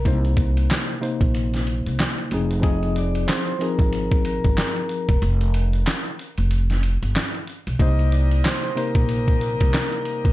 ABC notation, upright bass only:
X:1
M:4/4
L:1/16
Q:"Swing 16ths" 1/4=93
K:Cm
V:1 name="Upright bass" clef=bass
C,,4 z3 B,,,4 C,, z2 F,,,2- | F,,,4 z3 A,,,4 G,,, z3 =E,,, | F,,,4 z3 F,,,4 G,,, z3 =B,,, | C,,4 z3 B,,,4 C,, z3 =B,,, |]